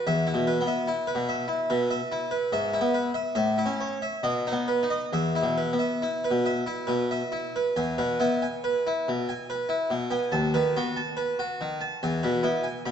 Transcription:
harpsichord
0.07 E2 E5
0.27 E4
0.34 B2
0.47 B4
0.61 B3
0.67 E5
0.87 E4
1.07 B4
1.15 B2
1.29 E5
1.48 E4
1.70 B2 B4
1.91 E5
2.12 E4
2.31 B4
2.52 G#2 E5
2.74 E4
2.81 B3
2.94 B4
3.14 E5
3.35 A2 E5
3.58 E4
3.66 C#4
3.81 C#5
4.02 E5
4.23 B2 D#5
4.47 D#4
4.52 B3
4.68 B4
4.83 D#4
4.90 D#5
5.13 E2 E5
5.35 E4
5.43 B2
5.58 B4
5.73 B3
5.79 E5
6.02 E4
6.24 B4
6.31 B2
6.46 E5
6.67 E4
6.87 B2 B4
7.11 E5
7.32 E4
7.56 B4
7.76 E2 G#5
7.98 B2 B4
8.20 B3 E4
8.42 G#5
8.64 B4
8.87 E4
9.08 B2
9.29 G#5
9.50 B4
9.69 E4
9.90 B2
10.11 B3 G#5
10.32 D#2 A5
10.54 D#3 B4
10.77 B3 F#4
10.96 A5
11.17 B4
11.39 F#4
11.61 D#3
11.81 A5
12.03 E2 G#5
12.23 B2 B4
12.43 B3 E4
12.64 G#5
12.86 B2 B5

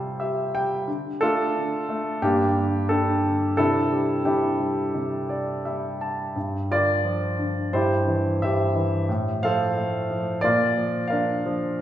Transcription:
grand piano
Already playing: C3 G3 F4 A4 C5
0.20 G4 E5
0.54 G3 G5
0.88 D3
1.21 A3 D4 F4 A4
1.56 D3
1.89 A3
2.22 G2 A#3 D4 G4
2.57 D3
2.89 G3 D4 A4
3.24 D3
3.57 C3 D4 E4 A4
3.92 G3
4.25 C3 D4 E4 G4
4.60 G3
4.95 C3
5.29 D5
5.65 G3 E5
6.01 A5
6.36 G2
6.71 D3 F4 A#4 D5
7.05 F3
7.39 D3
7.73 G2 E4 G4 C5
8.07 E3
8.42 G2 G4 C5 E5
8.75 E3
9.09 A2
9.42 F3 A4 C5 F5
9.77 A3
10.10 F3
10.41 A#2 F4 A#4 D5
10.77 F3
11.08 A#4 D5 F5
11.12 D4
11.46 F3

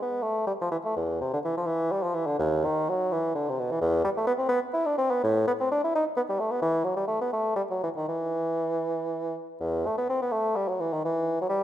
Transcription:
bassoon
0.02 B3
0.23 A3
0.47 G3
0.61 F3
0.71 E3
0.85 A3
0.96 E2
1.21 C3
1.33 D3
1.45 E3
1.57 F3
1.66 E3
1.92 G3
2.03 F3
2.14 E3
2.26 D3
2.39 D#2
2.65 D#3
2.89 F#3
3.12 E3
3.35 D3
3.49 C3
3.59 B2
3.71 E3
3.81 E2
4.04 G3
4.17 A3
4.27 B3
4.38 C4
4.49 B3
4.73 E4
4.86 D4
4.98 C4
5.11 B3
5.24 A2
5.47 B3
5.60 C4
5.71 D4
5.84 E4
5.95 D#4
6.17 B3
6.29 G3
6.40 A3
6.51 B3
6.62 E3
6.84 F#3
6.96 G3
7.07 A3
7.21 B3
7.33 A3
7.56 G3
7.70 F#3
7.83 E3
7.96 D#3
8.08 E3
9.60 E2
9.86 A3
9.98 B3
10.09 C4
10.22 B3
10.32 A3
10.56 G3
10.68 F#3
10.80 E3
10.93 D#3
11.04 E3
11.41 F#3
11.49 G3

